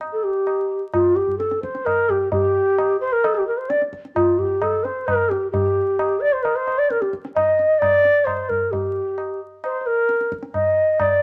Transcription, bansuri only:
0, 0, Header, 1, 2, 480
1, 0, Start_track
1, 0, Tempo, 461184
1, 2408, Time_signature, 7, 2, 24, 8
1, 6237, Tempo, 454890
1, 11758, End_track
2, 0, Start_track
2, 0, Title_t, "Bansuri"
2, 0, Program_c, 0, 73
2, 134, Note_on_c, 0, 69, 76
2, 247, Note_on_c, 0, 67, 80
2, 262, Note_off_c, 0, 69, 0
2, 846, Note_off_c, 0, 67, 0
2, 973, Note_on_c, 0, 65, 78
2, 1203, Note_on_c, 0, 67, 75
2, 1218, Note_off_c, 0, 65, 0
2, 1432, Note_off_c, 0, 67, 0
2, 1439, Note_on_c, 0, 69, 78
2, 1666, Note_off_c, 0, 69, 0
2, 1688, Note_on_c, 0, 72, 81
2, 1929, Note_on_c, 0, 70, 95
2, 1945, Note_off_c, 0, 72, 0
2, 2183, Note_on_c, 0, 67, 84
2, 2198, Note_off_c, 0, 70, 0
2, 2409, Note_off_c, 0, 67, 0
2, 2416, Note_on_c, 0, 67, 102
2, 3091, Note_off_c, 0, 67, 0
2, 3130, Note_on_c, 0, 72, 101
2, 3252, Note_on_c, 0, 70, 91
2, 3267, Note_off_c, 0, 72, 0
2, 3376, Note_on_c, 0, 69, 95
2, 3392, Note_off_c, 0, 70, 0
2, 3483, Note_on_c, 0, 67, 89
2, 3499, Note_off_c, 0, 69, 0
2, 3606, Note_off_c, 0, 67, 0
2, 3615, Note_on_c, 0, 70, 82
2, 3720, Note_on_c, 0, 72, 79
2, 3736, Note_off_c, 0, 70, 0
2, 3847, Note_on_c, 0, 74, 86
2, 3862, Note_off_c, 0, 72, 0
2, 3967, Note_off_c, 0, 74, 0
2, 4323, Note_on_c, 0, 65, 79
2, 4565, Note_on_c, 0, 67, 76
2, 4580, Note_off_c, 0, 65, 0
2, 4808, Note_on_c, 0, 69, 85
2, 4823, Note_off_c, 0, 67, 0
2, 5034, Note_on_c, 0, 72, 81
2, 5050, Note_off_c, 0, 69, 0
2, 5275, Note_on_c, 0, 70, 92
2, 5291, Note_off_c, 0, 72, 0
2, 5510, Note_on_c, 0, 67, 78
2, 5526, Note_off_c, 0, 70, 0
2, 5729, Note_off_c, 0, 67, 0
2, 5735, Note_on_c, 0, 67, 84
2, 6461, Note_on_c, 0, 74, 101
2, 6476, Note_off_c, 0, 67, 0
2, 6590, Note_on_c, 0, 72, 91
2, 6606, Note_off_c, 0, 74, 0
2, 6703, Note_on_c, 0, 70, 91
2, 6719, Note_off_c, 0, 72, 0
2, 6832, Note_on_c, 0, 72, 90
2, 6848, Note_off_c, 0, 70, 0
2, 7071, Note_on_c, 0, 74, 87
2, 7087, Note_off_c, 0, 72, 0
2, 7197, Note_on_c, 0, 70, 88
2, 7213, Note_off_c, 0, 74, 0
2, 7313, Note_on_c, 0, 67, 66
2, 7328, Note_off_c, 0, 70, 0
2, 7439, Note_off_c, 0, 67, 0
2, 7675, Note_on_c, 0, 75, 97
2, 8135, Note_on_c, 0, 74, 103
2, 8151, Note_off_c, 0, 75, 0
2, 8618, Note_on_c, 0, 72, 88
2, 8633, Note_off_c, 0, 74, 0
2, 8874, Note_on_c, 0, 70, 76
2, 8889, Note_off_c, 0, 72, 0
2, 9107, Note_on_c, 0, 67, 66
2, 9122, Note_off_c, 0, 70, 0
2, 9836, Note_off_c, 0, 67, 0
2, 10097, Note_on_c, 0, 72, 88
2, 10267, Note_off_c, 0, 72, 0
2, 10267, Note_on_c, 0, 72, 67
2, 10321, Note_on_c, 0, 70, 90
2, 10337, Note_off_c, 0, 72, 0
2, 10801, Note_off_c, 0, 70, 0
2, 11038, Note_on_c, 0, 75, 92
2, 11526, Note_on_c, 0, 74, 92
2, 11542, Note_off_c, 0, 75, 0
2, 11758, Note_off_c, 0, 74, 0
2, 11758, End_track
0, 0, End_of_file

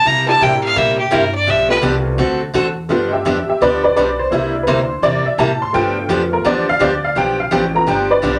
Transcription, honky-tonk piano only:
0, 0, Header, 1, 2, 480
1, 0, Start_track
1, 0, Tempo, 356083
1, 62, Time_signature, 4, 2, 24, 8
1, 11311, End_track
2, 0, Start_track
2, 0, Title_t, "Honky-tonk piano"
2, 0, Program_c, 0, 3
2, 356, Note_on_c, 0, 70, 80
2, 365, Note_on_c, 0, 60, 76
2, 370, Note_on_c, 0, 62, 82
2, 375, Note_on_c, 0, 64, 82
2, 382, Note_on_c, 0, 67, 100
2, 981, Note_off_c, 0, 70, 0
2, 985, Note_off_c, 0, 60, 0
2, 988, Note_off_c, 0, 62, 0
2, 991, Note_off_c, 0, 64, 0
2, 994, Note_off_c, 0, 67, 0
2, 2272, Note_on_c, 0, 57, 77
2, 2273, Note_on_c, 0, 59, 73
2, 2284, Note_on_c, 0, 62, 69
2, 2288, Note_on_c, 0, 65, 71
2, 2294, Note_on_c, 0, 67, 80
2, 2899, Note_off_c, 0, 57, 0
2, 2899, Note_off_c, 0, 59, 0
2, 2905, Note_off_c, 0, 62, 0
2, 2907, Note_off_c, 0, 65, 0
2, 2910, Note_off_c, 0, 67, 0
2, 3892, Note_on_c, 0, 57, 64
2, 3898, Note_on_c, 0, 59, 57
2, 3911, Note_on_c, 0, 65, 68
2, 4159, Note_on_c, 0, 75, 61
2, 4186, Note_off_c, 0, 75, 0
2, 4212, Note_on_c, 0, 67, 82
2, 4218, Note_on_c, 0, 76, 89
2, 4254, Note_off_c, 0, 57, 0
2, 4258, Note_off_c, 0, 59, 0
2, 4265, Note_off_c, 0, 65, 0
2, 4372, Note_off_c, 0, 67, 0
2, 4381, Note_off_c, 0, 76, 0
2, 4393, Note_on_c, 0, 67, 69
2, 4401, Note_on_c, 0, 76, 82
2, 4674, Note_off_c, 0, 67, 0
2, 4691, Note_off_c, 0, 76, 0
2, 4706, Note_on_c, 0, 67, 68
2, 4711, Note_on_c, 0, 76, 85
2, 4859, Note_off_c, 0, 67, 0
2, 4869, Note_off_c, 0, 76, 0
2, 4877, Note_on_c, 0, 71, 83
2, 4881, Note_on_c, 0, 74, 90
2, 5152, Note_off_c, 0, 71, 0
2, 5161, Note_off_c, 0, 74, 0
2, 5172, Note_on_c, 0, 71, 75
2, 5181, Note_on_c, 0, 74, 91
2, 5321, Note_off_c, 0, 71, 0
2, 5324, Note_off_c, 0, 74, 0
2, 5341, Note_on_c, 0, 71, 74
2, 5344, Note_on_c, 0, 74, 85
2, 5628, Note_off_c, 0, 71, 0
2, 5642, Note_off_c, 0, 74, 0
2, 5653, Note_on_c, 0, 72, 94
2, 5802, Note_on_c, 0, 58, 60
2, 5813, Note_on_c, 0, 62, 58
2, 5820, Note_off_c, 0, 72, 0
2, 5821, Note_on_c, 0, 64, 75
2, 6244, Note_on_c, 0, 71, 65
2, 6285, Note_off_c, 0, 71, 0
2, 6309, Note_on_c, 0, 72, 94
2, 6560, Note_off_c, 0, 58, 0
2, 6566, Note_off_c, 0, 62, 0
2, 6571, Note_off_c, 0, 64, 0
2, 6772, Note_off_c, 0, 72, 0
2, 6783, Note_on_c, 0, 74, 106
2, 7081, Note_off_c, 0, 74, 0
2, 7089, Note_on_c, 0, 76, 86
2, 7258, Note_off_c, 0, 76, 0
2, 7263, Note_on_c, 0, 81, 101
2, 7562, Note_off_c, 0, 81, 0
2, 7575, Note_on_c, 0, 84, 91
2, 7721, Note_on_c, 0, 57, 69
2, 7728, Note_on_c, 0, 59, 53
2, 7741, Note_off_c, 0, 84, 0
2, 7741, Note_on_c, 0, 79, 109
2, 7742, Note_on_c, 0, 65, 68
2, 8208, Note_off_c, 0, 79, 0
2, 8479, Note_off_c, 0, 57, 0
2, 8483, Note_off_c, 0, 59, 0
2, 8491, Note_off_c, 0, 65, 0
2, 8514, Note_on_c, 0, 57, 53
2, 8524, Note_on_c, 0, 59, 44
2, 8529, Note_on_c, 0, 65, 53
2, 8534, Note_on_c, 0, 70, 91
2, 8677, Note_off_c, 0, 57, 0
2, 8683, Note_off_c, 0, 59, 0
2, 8686, Note_off_c, 0, 65, 0
2, 8700, Note_off_c, 0, 70, 0
2, 8710, Note_on_c, 0, 74, 94
2, 9005, Note_off_c, 0, 74, 0
2, 9022, Note_on_c, 0, 77, 108
2, 9184, Note_off_c, 0, 77, 0
2, 9186, Note_on_c, 0, 74, 95
2, 9482, Note_off_c, 0, 74, 0
2, 9495, Note_on_c, 0, 77, 86
2, 9660, Note_off_c, 0, 77, 0
2, 9671, Note_on_c, 0, 79, 100
2, 9964, Note_off_c, 0, 79, 0
2, 9973, Note_on_c, 0, 77, 83
2, 10139, Note_off_c, 0, 77, 0
2, 10145, Note_on_c, 0, 79, 84
2, 10431, Note_on_c, 0, 57, 53
2, 10441, Note_off_c, 0, 79, 0
2, 10445, Note_on_c, 0, 59, 48
2, 10448, Note_on_c, 0, 65, 53
2, 10456, Note_on_c, 0, 82, 96
2, 10620, Note_off_c, 0, 82, 0
2, 10624, Note_on_c, 0, 79, 84
2, 10720, Note_off_c, 0, 57, 0
2, 10727, Note_off_c, 0, 59, 0
2, 10729, Note_off_c, 0, 65, 0
2, 10920, Note_off_c, 0, 79, 0
2, 10925, Note_on_c, 0, 71, 80
2, 10933, Note_on_c, 0, 74, 92
2, 11311, Note_off_c, 0, 71, 0
2, 11311, Note_off_c, 0, 74, 0
2, 11311, End_track
0, 0, End_of_file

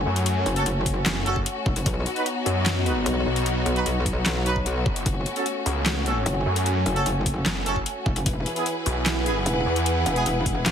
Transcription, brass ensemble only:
0, 0, Header, 1, 2, 480
1, 0, Start_track
1, 0, Tempo, 400000
1, 312, Time_signature, 4, 2, 24, 8
1, 12859, End_track
2, 0, Start_track
2, 0, Title_t, "Brass ensemble"
2, 0, Program_c, 0, 61
2, 673, Note_on_c, 0, 61, 96
2, 673, Note_on_c, 0, 66, 87
2, 673, Note_on_c, 0, 69, 108
2, 782, Note_off_c, 0, 61, 0
2, 782, Note_off_c, 0, 66, 0
2, 782, Note_off_c, 0, 69, 0
2, 1512, Note_on_c, 0, 61, 97
2, 1512, Note_on_c, 0, 66, 89
2, 1512, Note_on_c, 0, 69, 109
2, 1622, Note_off_c, 0, 61, 0
2, 1622, Note_off_c, 0, 66, 0
2, 1622, Note_off_c, 0, 69, 0
2, 2592, Note_on_c, 0, 63, 82
2, 2592, Note_on_c, 0, 66, 72
2, 2592, Note_on_c, 0, 71, 90
2, 2701, Note_off_c, 0, 63, 0
2, 2701, Note_off_c, 0, 66, 0
2, 2701, Note_off_c, 0, 71, 0
2, 3431, Note_on_c, 0, 66, 78
2, 3431, Note_on_c, 0, 71, 94
2, 3432, Note_on_c, 0, 63, 85
2, 3542, Note_off_c, 0, 63, 0
2, 3542, Note_off_c, 0, 66, 0
2, 3542, Note_off_c, 0, 71, 0
2, 4512, Note_on_c, 0, 63, 98
2, 4512, Note_on_c, 0, 66, 90
2, 4512, Note_on_c, 0, 71, 103
2, 4621, Note_off_c, 0, 63, 0
2, 4621, Note_off_c, 0, 66, 0
2, 4621, Note_off_c, 0, 71, 0
2, 5351, Note_on_c, 0, 71, 109
2, 5352, Note_on_c, 0, 63, 99
2, 5352, Note_on_c, 0, 66, 88
2, 5462, Note_off_c, 0, 63, 0
2, 5462, Note_off_c, 0, 66, 0
2, 5462, Note_off_c, 0, 71, 0
2, 6432, Note_on_c, 0, 61, 81
2, 6432, Note_on_c, 0, 66, 70
2, 6432, Note_on_c, 0, 69, 86
2, 6541, Note_off_c, 0, 61, 0
2, 6541, Note_off_c, 0, 66, 0
2, 6541, Note_off_c, 0, 69, 0
2, 7271, Note_on_c, 0, 61, 86
2, 7271, Note_on_c, 0, 66, 79
2, 7271, Note_on_c, 0, 69, 92
2, 7382, Note_off_c, 0, 61, 0
2, 7382, Note_off_c, 0, 66, 0
2, 7382, Note_off_c, 0, 69, 0
2, 8352, Note_on_c, 0, 61, 96
2, 8352, Note_on_c, 0, 66, 86
2, 8352, Note_on_c, 0, 69, 105
2, 8461, Note_off_c, 0, 61, 0
2, 8461, Note_off_c, 0, 66, 0
2, 8461, Note_off_c, 0, 69, 0
2, 9192, Note_on_c, 0, 61, 100
2, 9192, Note_on_c, 0, 66, 90
2, 9192, Note_on_c, 0, 69, 108
2, 9302, Note_off_c, 0, 61, 0
2, 9302, Note_off_c, 0, 66, 0
2, 9302, Note_off_c, 0, 69, 0
2, 10272, Note_on_c, 0, 59, 77
2, 10273, Note_on_c, 0, 64, 76
2, 10273, Note_on_c, 0, 68, 86
2, 10381, Note_off_c, 0, 59, 0
2, 10381, Note_off_c, 0, 68, 0
2, 10382, Note_off_c, 0, 64, 0
2, 11112, Note_on_c, 0, 59, 88
2, 11112, Note_on_c, 0, 64, 79
2, 11112, Note_on_c, 0, 68, 92
2, 11222, Note_off_c, 0, 59, 0
2, 11222, Note_off_c, 0, 64, 0
2, 11222, Note_off_c, 0, 68, 0
2, 12193, Note_on_c, 0, 59, 94
2, 12193, Note_on_c, 0, 64, 88
2, 12193, Note_on_c, 0, 68, 109
2, 12301, Note_off_c, 0, 64, 0
2, 12302, Note_off_c, 0, 59, 0
2, 12302, Note_off_c, 0, 68, 0
2, 12859, End_track
0, 0, End_of_file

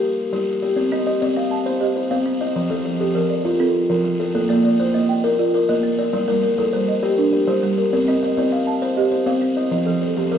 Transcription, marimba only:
0, 0, Header, 1, 2, 480
1, 0, Start_track
1, 0, Tempo, 298359
1, 1242, Time_signature, 12, 3, 24, 8
1, 16699, End_track
2, 0, Start_track
2, 0, Title_t, "Marimba"
2, 0, Program_c, 0, 12
2, 1481, Note_on_c, 0, 60, 88
2, 1719, Note_on_c, 0, 75, 62
2, 1953, Note_on_c, 0, 74, 58
2, 1961, Note_off_c, 0, 60, 0
2, 2198, Note_on_c, 0, 60, 74
2, 2433, Note_on_c, 0, 81, 60
2, 2440, Note_off_c, 0, 75, 0
2, 2676, Note_off_c, 0, 74, 0
2, 2679, Note_off_c, 0, 60, 0
2, 2908, Note_on_c, 0, 75, 74
2, 2909, Note_on_c, 0, 67, 79
2, 3156, Note_off_c, 0, 81, 0
2, 3386, Note_on_c, 0, 77, 57
2, 3394, Note_off_c, 0, 67, 0
2, 3633, Note_off_c, 0, 75, 0
2, 3633, Note_on_c, 0, 60, 69
2, 4112, Note_off_c, 0, 77, 0
2, 4112, Note_on_c, 0, 75, 60
2, 4115, Note_off_c, 0, 60, 0
2, 4346, Note_on_c, 0, 53, 83
2, 4595, Note_off_c, 0, 75, 0
2, 4830, Note_on_c, 0, 67, 63
2, 4832, Note_off_c, 0, 53, 0
2, 5062, Note_on_c, 0, 53, 69
2, 5309, Note_on_c, 0, 74, 62
2, 5550, Note_off_c, 0, 53, 0
2, 5553, Note_off_c, 0, 67, 0
2, 5791, Note_on_c, 0, 60, 89
2, 5794, Note_on_c, 0, 69, 75
2, 6033, Note_off_c, 0, 74, 0
2, 6272, Note_on_c, 0, 70, 62
2, 6274, Note_off_c, 0, 60, 0
2, 6508, Note_on_c, 0, 53, 83
2, 6515, Note_off_c, 0, 69, 0
2, 6985, Note_on_c, 0, 69, 59
2, 6992, Note_off_c, 0, 53, 0
2, 6994, Note_off_c, 0, 70, 0
2, 7224, Note_on_c, 0, 58, 81
2, 7456, Note_on_c, 0, 74, 62
2, 7470, Note_off_c, 0, 69, 0
2, 7710, Note_off_c, 0, 58, 0
2, 7710, Note_on_c, 0, 72, 60
2, 7954, Note_on_c, 0, 58, 70
2, 8186, Note_off_c, 0, 74, 0
2, 8189, Note_on_c, 0, 79, 64
2, 8432, Note_off_c, 0, 72, 0
2, 8434, Note_off_c, 0, 58, 0
2, 8674, Note_on_c, 0, 65, 84
2, 8675, Note_on_c, 0, 74, 69
2, 8912, Note_off_c, 0, 79, 0
2, 9146, Note_on_c, 0, 75, 62
2, 9154, Note_off_c, 0, 65, 0
2, 9384, Note_on_c, 0, 58, 71
2, 9395, Note_off_c, 0, 74, 0
2, 9860, Note_on_c, 0, 74, 63
2, 9869, Note_off_c, 0, 58, 0
2, 9870, Note_off_c, 0, 75, 0
2, 10101, Note_on_c, 0, 55, 82
2, 10347, Note_off_c, 0, 74, 0
2, 10349, Note_on_c, 0, 70, 57
2, 10586, Note_on_c, 0, 69, 60
2, 10588, Note_off_c, 0, 55, 0
2, 10834, Note_on_c, 0, 55, 67
2, 11071, Note_off_c, 0, 70, 0
2, 11071, Note_on_c, 0, 75, 61
2, 11310, Note_off_c, 0, 69, 0
2, 11314, Note_off_c, 0, 55, 0
2, 11546, Note_on_c, 0, 70, 67
2, 11554, Note_on_c, 0, 62, 83
2, 11793, Note_off_c, 0, 75, 0
2, 12028, Note_on_c, 0, 72, 57
2, 12035, Note_off_c, 0, 62, 0
2, 12271, Note_off_c, 0, 70, 0
2, 12272, Note_on_c, 0, 55, 74
2, 12752, Note_off_c, 0, 72, 0
2, 12754, Note_off_c, 0, 55, 0
2, 12766, Note_on_c, 0, 70, 54
2, 13000, Note_on_c, 0, 60, 83
2, 13229, Note_on_c, 0, 75, 64
2, 13241, Note_off_c, 0, 70, 0
2, 13470, Note_on_c, 0, 74, 63
2, 13478, Note_off_c, 0, 60, 0
2, 13712, Note_on_c, 0, 60, 65
2, 13951, Note_on_c, 0, 81, 64
2, 13953, Note_off_c, 0, 75, 0
2, 14194, Note_off_c, 0, 74, 0
2, 14195, Note_off_c, 0, 60, 0
2, 14430, Note_on_c, 0, 75, 64
2, 14434, Note_on_c, 0, 67, 85
2, 14675, Note_off_c, 0, 81, 0
2, 14912, Note_on_c, 0, 77, 64
2, 14916, Note_off_c, 0, 67, 0
2, 15153, Note_on_c, 0, 60, 77
2, 15155, Note_off_c, 0, 75, 0
2, 15636, Note_off_c, 0, 60, 0
2, 15636, Note_off_c, 0, 77, 0
2, 15639, Note_on_c, 0, 75, 59
2, 15878, Note_on_c, 0, 53, 78
2, 16114, Note_on_c, 0, 69, 59
2, 16120, Note_off_c, 0, 75, 0
2, 16358, Note_on_c, 0, 67, 59
2, 16360, Note_off_c, 0, 53, 0
2, 16594, Note_on_c, 0, 53, 77
2, 16699, Note_off_c, 0, 53, 0
2, 16699, Note_off_c, 0, 67, 0
2, 16699, Note_off_c, 0, 69, 0
2, 16699, End_track
0, 0, End_of_file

